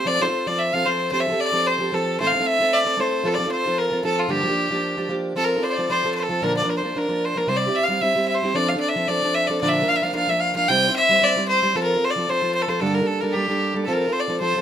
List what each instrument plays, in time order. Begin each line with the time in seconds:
0.05 steel-string acoustic guitar F3 C4 F4 A4, fiddle D5
0.21 steel-string acoustic guitar F3 C4 F4 A4, fiddle C5
0.26 steel-string acoustic guitar C4 F4 A4
0.47 steel-string acoustic guitar F3 C4 F4 A4, fiddle D5
0.59 fiddle E5
0.73 steel-string acoustic guitar F3 C4 F4 A4, fiddle F5
0.86 steel-string acoustic guitar F3 C4 F4 A4, fiddle C5
1.12 steel-string acoustic guitar F3 C4 G4 A4, fiddle C5
1.20 fiddle E5
1.27 steel-string acoustic guitar F3 C4 G4 A4
1.32 steel-string acoustic guitar C4 G4 A4
1.40 fiddle D5
1.52 steel-string acoustic guitar F3 C4 G4 A4
1.67 fiddle C5
1.78 steel-string acoustic guitar F3 C4 G4 A4
1.92 steel-string acoustic guitar F3 C4 G4 A4, fiddle A4
2.20 steel-string acoustic guitar A2 E3 A3 C4 E4 A4, fiddle C5
2.27 fiddle F5
2.33 steel-string acoustic guitar A3 C4 E4 A4
2.40 steel-string acoustic guitar A3 C4 E4 A4
2.46 fiddle E5
2.60 steel-string acoustic guitar A3 C4 E4 A4
2.73 fiddle D5
2.84 steel-string acoustic guitar A3 C4 E4 A4
2.97 steel-string acoustic guitar A3 C4 E4 A4, fiddle C5
3.24 steel-string acoustic guitar F3 C4 F4 A4, fiddle A4
3.34 fiddle D5
3.38 steel-string acoustic guitar F3 C4 F4
3.46 steel-string acoustic guitar C4 F4 A4
3.52 fiddle C5
3.66 steel-string acoustic guitar F3 C4 F4 A4
3.79 fiddle A#4
3.91 steel-string acoustic guitar F3 C4 F4 A4
4.03 steel-string acoustic guitar F3 C4 F4 A4, fiddle A4
4.19 fiddle F4
4.28 steel-string acoustic guitar G2 D3 F3 A#3 D4 G4, fiddle G4
4.42 steel-string acoustic guitar F3 A#3 D4 G4
4.48 steel-string acoustic guitar F3 A#3 D4 G4
4.70 steel-string acoustic guitar F3 A#3 D4 G4
4.97 steel-string acoustic guitar F3 A#3 D4 G4
5.09 steel-string acoustic guitar F3 A#3 D4 G4
5.35 steel-string acoustic guitar F3 C4 F4 A4, fiddle A4
5.44 fiddle A#4
5.56 steel-string acoustic guitar C4 F4 A4
5.62 fiddle C5 D5
5.70 fiddle D5
5.78 steel-string acoustic guitar F3 C4 F4 A4
5.90 steel-string acoustic guitar F3 C4 F4 A4, fiddle C5
6.04 steel-string acoustic guitar F3 C4 F4 A4
6.15 fiddle C5
6.23 fiddle A4
6.29 steel-string acoustic guitar F3 C4 F4 A4
6.42 steel-string acoustic guitar A#2 D3 F3 A#3 D4 A#4, fiddle A#4
6.57 fiddle D5
6.63 steel-string acoustic guitar F3 A#3 D4 A#4
6.70 fiddle A#4
6.77 fiddle C5
6.83 steel-string acoustic guitar F3 A#3 D4 A#4
6.95 steel-string acoustic guitar F3 A#3 D4 A#4, fiddle A#4
7.09 steel-string acoustic guitar F3 A#3 D4 A#4
7.24 fiddle C5
7.36 steel-string acoustic guitar F3 A#3 D4 A#4, fiddle A#4
7.47 steel-string acoustic guitar C3 G3 C4 E4 G4, fiddle C5
7.56 fiddle D5
7.67 steel-string acoustic guitar C4 E4 G4
7.75 fiddle E5
7.83 fiddle F5
7.88 steel-string acoustic guitar G3 C4 E4 G4
8.01 steel-string acoustic guitar G3 C4 E4 G4, fiddle E5
8.15 steel-string acoustic guitar G3 C4 E4 G4
8.28 fiddle E5
8.35 fiddle C5
8.42 steel-string acoustic guitar G3 C4 E4 G4
8.54 steel-string acoustic guitar F3 C4 D4 A4, fiddle D5
8.69 fiddle F5
8.75 steel-string acoustic guitar C4 D4 A4
8.80 fiddle D5
8.88 fiddle E5
8.96 steel-string acoustic guitar F3 C4 D4 A4
9.08 steel-string acoustic guitar F3 C4 D4 A4, fiddle D5
9.22 steel-string acoustic guitar F3 C4 D4 A4
9.35 fiddle E5
9.47 steel-string acoustic guitar F3 C4 D4 A4, fiddle D5
9.61 steel-string acoustic guitar A#2 D3 F3 A#3 D4 A#4, fiddle D5
9.68 fiddle E5
9.82 steel-string acoustic guitar F3 A#3 D4 A#4
9.88 fiddle F5
9.96 fiddle E5
10.02 steel-string acoustic guitar F3 A#3 D4 A#4, fiddle F5
10.13 steel-string acoustic guitar F3 A#3 D4 A#4, fiddle F5
10.27 steel-string acoustic guitar F3 A#3 D4 A#4, fiddle E5
10.40 fiddle F5
10.55 steel-string acoustic guitar F3 A#3 D4 A#4, fiddle F5
10.69 steel-string acoustic guitar C3 G3 C4 E4 C5, fiddle G5
10.88 steel-string acoustic guitar C4 E4 C5
10.96 fiddle E5
11.09 steel-string acoustic guitar G3 C4 E4 C5
11.20 steel-string acoustic guitar G3 C4 E4 C5, fiddle D5
11.36 steel-string acoustic guitar G3 C4 E4 C5
11.48 fiddle C5
11.62 steel-string acoustic guitar G3 C4 E4 C5
11.75 steel-string acoustic guitar F3 C4 F4 A4, fiddle A4
11.83 fiddle A#4
11.95 steel-string acoustic guitar C4 F4 A4
12.04 fiddle C5
12.10 fiddle D5
12.16 steel-string acoustic guitar F3 C4 F4 A4
12.28 steel-string acoustic guitar F3 C4 F4 A4, fiddle C5
12.42 steel-string acoustic guitar F3 C4 F4 A4
12.55 fiddle C5
12.62 fiddle A4
12.68 steel-string acoustic guitar F3 C4 F4 A4, fiddle C5
12.80 steel-string acoustic guitar G2 D3 G3 A#3 D4 A4, fiddle A4
12.94 fiddle A#4
13.01 steel-string acoustic guitar G3 A#3 D4 A4
13.07 fiddle A4
13.21 steel-string acoustic guitar G3 A#3 D4 A4, fiddle A#4
13.33 steel-string acoustic guitar G3 A#3, fiddle G4
13.37 steel-string acoustic guitar D4 A4
13.48 steel-string acoustic guitar G3 A#3 D4 A4
13.74 steel-string acoustic guitar G3 A#3 D4 A4
13.86 steel-string acoustic guitar F3 C4 F4 A4, fiddle A4
13.93 fiddle A#4
14.07 steel-string acoustic guitar C4 F4 A4
14.12 fiddle C5
14.20 fiddle D5
14.28 steel-string acoustic guitar F3 C4 F4 A4
14.40 steel-string acoustic guitar F3 C4 F4 A4, fiddle C5
14.56 steel-string acoustic guitar F3 C4 F4 A4